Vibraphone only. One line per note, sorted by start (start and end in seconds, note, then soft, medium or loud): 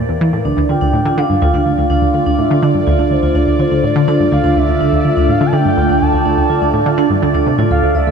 0.45 0.54 D4 medium
0.69 0.75 F4 medium
0.81 0.91 D4 loud
1.05 1.11 F4 medium
1.18 1.27 D4 loud
1.42 1.47 F4 medium
1.54 1.63 D4 loud
1.78 1.84 F4 medium
1.90 1.99 D4 loud
2.14 2.20 F4 medium
2.26 2.36 D4 loud
2.51 2.56 F4 medium
2.63 2.72 D4 loud
2.87 2.93 F4 medium
2.99 3.08 D4 loud
3.23 3.29 F4 medium
3.35 3.45 D4 medium
3.59 3.65 F4 medium
3.71 3.81 D4 medium
3.96 4.01 F4 medium
4.08 4.17 D4 loud
4.32 4.38 F4 medium
4.44 4.53 D4 loud
4.68 4.74 F4 medium
4.81 4.90 D4 loud
5.05 5.10 F4 medium
5.17 5.26 D4 loud
5.41 5.47 F4 medium
5.53 5.62 D4 loud
5.77 5.83 F4 medium
5.89 5.99 D4 loud
6.13 6.19 F4 medium
6.25 6.35 D4 loud
6.50 6.55 F4 medium
6.62 6.71 D4 loud
6.86 6.92 F4 medium
6.98 7.08 D4 loud
7.22 7.28 F4 medium
7.34 7.44 D4 loud
7.59 7.68 F4 medium
7.71 7.82 A4 medium
7.95 8.01 D5 medium
8.07 8.11 A4 medium